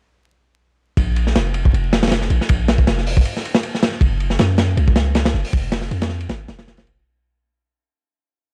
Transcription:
0.97 808-style bass A#1, kick, ride
1.16 ride
1.27 snare
1.35 808-style bass F1, snare, ride
1.54 ride
1.65 kick
1.73 808-style bass F1, ride
1.93 snare, ride
2.03 snare, ride
2.07 snare, ride
2.12 snare, ride
2.22 snare
2.30 808-style bass A#1, ride
2.41 snare
2.49 808-style bass A#1, kick, ride
2.68 snare, ride
2.78 kick
2.87 808-style bass F1, snare, ride
2.98 snare
3.06 open hi-hat
3.17 kick
3.25 ride
3.37 snare
3.45 ride
3.55 snare
3.63 ride
3.75 snare
3.83 snare, ride
3.92 snare
4.01 808-style bass F#1, kick, ride
4.20 ride
4.30 snare
4.39 808-style bass F#2, snare, ride
4.58 snare, ride
4.77 808-style bass C#2, ride
4.88 kick
4.96 snare, ride
5.15 snare, ride
5.25 snare, ride
5.34 808-style bass F#1, snare
5.45 open hi-hat
5.53 808-style bass F1, kick, ride
5.72 snare, ride
5.82 snare
5.91 808-style bass F2, ride
6.02 snare, ride
6.09 snare
6.21 ride
6.29 808-style bass G#1, snare, ride
6.48 808-style bass F1, snare, ride
6.59 snare, ride
6.68 snare, ride
6.77 snare, ride
6.87 ride

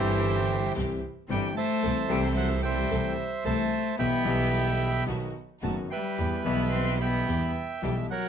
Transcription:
Already playing: double bass G1, grand piano G1 G2 E3 G3 C4 G4, cello E3, string section C4 E4 G4, bandoneon G4 C5 E5
0.76 double bass C2, grand piano C2 C3 E3 G3 C4 G4, string section C4 E4 G4
1.29 double bass G1, grand piano G1 G2 E3 G3 C4 G4, cello G3, string section C4 E4 G4, bandoneon G5
1.55 cello A3, bandoneon C5 E5 A5
1.83 double bass C2, grand piano C2 C3 E3 A3 C4 A4, string section C4 E4 A4
2.08 grand piano C2 C3 E3 A3 C4, double bass C2, cello G3, string section C4 E4 A4, bandoneon G5
2.12 grand piano A4
2.35 cello F#3, bandoneon F#5
2.63 cello G3, bandoneon C5 E5 G5
2.91 double bass C2, grand piano C2 C3 E3 A3 C4 A4, string section C4 E4 A4
3.45 double bass C2, grand piano C2 C3 E3 A3 C4 A4, cello A3, string section C4 E4 A4, bandoneon C5 E5 A5
3.98 grand piano B1 B2 E3 G3 B3 G4, double bass B1, cello B3, string section B3 E4 G4, bandoneon E5 G5 B5
4.23 grand piano B1 B2 E3 G3 B3 G4, double bass B1, string section B3 E4 G4
5.07 grand piano B1 B2 D#3 F#3 B3 F#4, double bass B1, string section B3 D#4 F#4
5.62 grand piano F#1 F#2 D#3 F#3 B3 F#4, double bass F#1, cello A3, string section B3 D#4 F#4, bandoneon A5
5.90 cello G3, bandoneon B4 E5 G5
6.18 double bass E2, grand piano E2 E3 G3 B3 G4, string section B3 E4 G4
6.44 double bass B1, grand piano B1 B2 E3 G3 B3, cello B3, string section B3 E4 G4, bandoneon B5
6.48 grand piano G4
6.72 cello C4, bandoneon C6
7.00 cello B3, bandoneon E5 G5 B5
7.27 double bass E2, grand piano E2 E3 G3 B3 G4, string section B3 E4 G4
7.82 double bass B1, grand piano B1 B2 E3 G3 B3 G4, cello G3, string section B3 E4 G4, bandoneon G5
8.09 cello F#3, bandoneon A#4 C#5 F#5

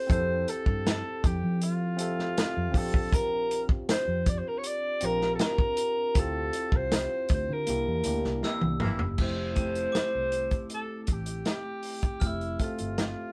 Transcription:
Already playing: tine electric piano C4 E4 G4 A4, alto saxophone C5, glockenspiel G6 C7
0.07 fingered electric bass F2, tine electric piano C4 E4 G4 A4, kick, closed hi-hat
0.12 alto saxophone C5
0.48 alto saxophone A4, closed hi-hat
0.66 fingered electric bass G2, kick
0.86 snare, closed hi-hat
1.24 fingered electric bass F2, alto saxophone G4, kick, closed hi-hat
1.44 fingered electric bass F3
1.61 alto saxophone F4, closed hi-hat
1.97 tine electric piano C4 G4 A4 E5, closed hi-hat
2.19 snare
2.37 snare, closed hi-hat
2.57 fingered electric bass F2
2.72 fingered electric bass A#1, tine electric piano C4 D4 F4 G4, kick, open hi-hat
2.77 alto saxophone A4
2.94 kick
3.13 alto saxophone A#4, kick, closed hi-hat
3.51 closed hi-hat
3.69 kick
3.89 alto saxophone C5, muted fingered electric bass stroke, snare, closed hi-hat
4.08 fingered electric bass F2
4.26 alto saxophone D5, kick, closed hi-hat
4.39 alto saxophone C5
4.48 alto saxophone A#4
4.58 alto saxophone C#5
4.64 alto saxophone D5, closed hi-hat
5.01 fingered electric bass A#1, tine electric piano C4 D4 F4 G4, glockenspiel A#6, closed hi-hat
5.05 alto saxophone A#4
5.21 snare
5.35 alto saxophone A4
5.39 alto saxophone A#4, snare, closed hi-hat
5.58 kick
5.77 closed hi-hat
6.14 fingered electric bass D2, tine electric piano C4 E4 F4 G4, kick, closed hi-hat
6.19 alto saxophone A4
6.53 closed hi-hat
6.72 fingered electric bass C2, kick
6.76 alto saxophone C5
6.92 snare, closed hi-hat
7.29 fingered electric bass D2, kick, closed hi-hat
7.34 alto saxophone C5
7.49 fingered electric bass D3, alto saxophone A#4
7.66 fingered electric bass C2, tine electric piano A#3 D4 E4 G4, closed hi-hat
7.87 fingered electric bass E2
8.04 fingered electric bass D2, tine electric piano A#3 D4 E4 G4, closed hi-hat
8.25 fingered electric bass C2, snare
8.43 horn section C3 E3 A#3 E4, glockenspiel E6, snare
8.61 fingered electric bass C2, high tom
8.80 fingered electric bass G1, horn section C3 E3 A#3 E4, mid tom
8.99 fingered electric bass F#1, floor tom
9.17 fingered electric bass F1, tine electric piano A3 C4 E4 G4, alto saxophone C5, kick, crash
9.55 tine electric piano A3 C4 E4 G4, glockenspiel A5, kick, closed hi-hat
9.75 closed hi-hat
9.92 glockenspiel D6, muted fingered electric bass stroke, snare, closed hi-hat
10.15 fingered electric bass C2
10.32 closed hi-hat
10.51 kick, closed hi-hat
10.70 closed hi-hat
10.74 alto saxophone A4
11.03 alto saxophone A4, closed hi-hat
11.08 fingered electric bass A1, kick
11.12 alto saxophone G4
11.26 closed hi-hat
11.45 snare, closed hi-hat
11.50 alto saxophone G4
11.83 open hi-hat
12.02 kick, closed hi-hat
12.20 fingered electric bass F1, tine electric piano A3 C4 E4 G4, glockenspiel F6, kick, closed hi-hat
12.26 alto saxophone E4
12.41 closed hi-hat
12.58 tine electric piano A3 C4 A4 E5, kick, closed hi-hat
12.64 alto saxophone F4
12.78 fingered electric bass G1, closed hi-hat
12.98 snare, closed hi-hat

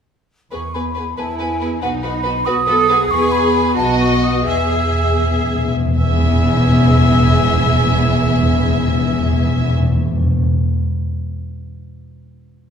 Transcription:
0.52 double bass section E2, viola section B3, violin section G#4 B4, flute C#6
0.74 viola section B3, violin section G#4 B4, flute B5
0.95 viola section B3, violin section G#4 B4
1.18 double bass section E2, viola section B3, cello section E4, violin section G#4 B4, flute A5
1.40 viola section B3, violin section G#4 B4, flute G#5
1.61 viola section B3, violin section G#4 B4
1.82 double bass section B1, timpani B2, viola section B3, cello section D#4, violin section F#4 B4, flute F#5
2.03 viola section B3, violin section F#4 B4, flute B5
2.23 viola section B3, violin section F#4 B4
2.45 double bass section B1, viola section B3, violin section F#4 B4, cello section F#4, flute D#6
2.67 viola section B3, violin section F#4 B4, cello section A4
2.89 viola section B3, violin section F#4 B4, cello section G#4
3.11 double bass section E2, viola section B3, violin section G#4 B4, flute C#6
3.32 flute B5
3.77 double bass section B1, viola section B3, cello section F#4, violin section F#4 D#5, flute A5
4.00 flute C#6
4.24 flute D#6
4.47 timpani E2, double bass section E2, viola section B3, cello section G#4, violin section G#4 E5, flute E6
4.55 timpani E2
4.64 timpani E2
4.72 timpani E2
4.81 timpani E2
4.89 timpani E2
4.98 timpani E2
5.06 timpani E2
5.15 timpani E2
5.24 timpani E2
5.32 timpani E2
5.41 timpani E2
5.49 timpani E2
5.58 timpani E2
5.67 timpani E2
5.77 timpani E2
5.85 timpani E2
5.97 double bass section E1, timpani E2, cello section E2, viola section B3, violin section G#4 E5, flute E6
6.04 timpani E2
6.11 timpani E2
6.17 timpani E2
6.23 timpani E2
6.30 timpani E2
6.36 timpani E2
6.43 timpani E2
6.49 timpani E2
6.56 timpani E2
6.63 timpani E2
6.69 timpani E2
6.75 timpani E2
6.82 timpani E2
6.88 timpani E2
6.94 timpani E2
7.00 timpani E2
7.07 timpani E2
7.13 timpani E2
7.19 timpani E2
7.26 timpani E2
7.32 timpani E2
7.38 timpani E2
7.45 timpani E2
7.51 timpani E2
7.57 timpani E2
7.64 timpani E2
7.70 timpani E2
7.77 timpani E2
7.83 timpani E2
7.89 timpani E2
7.95 timpani E2
8.02 timpani E2
8.08 timpani E2
8.15 timpani E2
8.21 timpani E2
8.28 timpani E2
8.34 timpani E2
8.40 timpani E2
8.47 timpani E2
8.53 timpani E2
8.59 timpani E2
8.66 timpani E2
8.73 timpani E2
8.79 timpani E2
8.85 timpani E2
8.91 timpani E2
8.97 timpani E2
9.04 timpani E2
9.10 timpani E2
9.17 timpani E2
9.23 timpani E2
9.29 timpani E2
9.36 timpani E2
9.42 timpani E2
9.48 timpani E2
9.54 timpani E2
9.61 timpani E2
9.67 timpani E2
9.73 timpani E2
9.79 timpani E2
9.86 timpani E2
9.92 timpani E2
9.99 timpani E2
10.05 timpani E2
10.11 timpani E2
10.17 timpani E2
10.24 timpani E2
10.30 timpani E2
10.37 timpani E2
10.43 timpani E2

